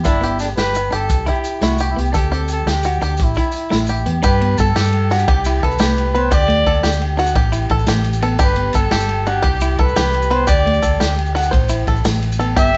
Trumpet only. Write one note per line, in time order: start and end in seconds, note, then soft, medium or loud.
0.04 0.37 E4 loud
0.40 0.48 D4 medium
0.57 0.90 B4 loud
0.94 1.26 A4 medium
1.28 1.60 G4 loud
1.63 1.87 F#4 medium
1.90 2.01 E4 medium
1.99 2.14 G4 medium
2.14 2.31 G4 loud
2.33 2.49 A4 medium
2.52 2.71 A4 medium
2.69 3.25 G4 medium
3.23 4.08 E4 medium
4.23 4.60 B4 medium
4.59 5.13 A4 loud
5.12 5.65 G4 medium
5.64 6.19 B4 loud
6.17 6.33 C5 loud
6.33 6.98 D5 loud
8.43 8.78 B4 loud
8.76 9.29 A4 loud
9.27 9.81 G4 medium
9.80 10.33 B4 loud
10.31 10.47 C5 loud
10.47 11.13 D5 loud
12.59 12.77 E5 loud